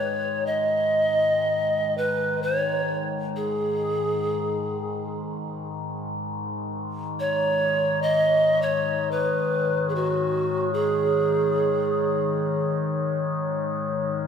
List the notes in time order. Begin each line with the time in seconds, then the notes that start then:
Already playing: G#2 D#3 C#5
0.46 D#5
1.91 G#2 D#3
1.98 B4
2.43 C#5
3.36 G#4
7.20 C#5
8.01 C#5 D#5
8.62 C#5
9.11 B4
9.89 G#4
9.95 F#4
10.74 G#4